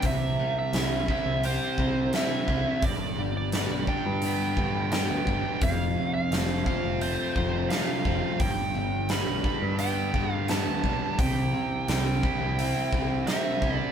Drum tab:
HH |o-o-o-o-|o-o-o-o-|o-o-o-o-|o-o-o-o-|
SD |--o---o-|--o---o-|--o---o-|--o---o-|
BD |o--o-o-o|o--o-o-o|o--o-o-o|o--o-o-o|

HH |o-o-o-o-|
SD |--o---o-|
BD |o--o-o-o|